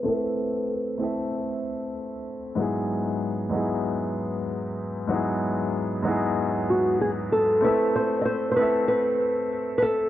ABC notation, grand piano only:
X:1
M:4/4
L:1/8
Q:"Swing 16ths" 1/4=95
K:E
V:1 name="Grand piano"
[A,=CEAe]3 [A,CEAe]4- [A,CEAe] | [G,,F,B,DEG]3 [G,,F,B,DEG]4- [G,,F,B,DEG] | [G,,F,B,DEG]3 [G,,F,B,DEG]4- [G,,F,B,DEG] | [A,=CEAe]3 [A,CEAe]4- [A,CEAe] |]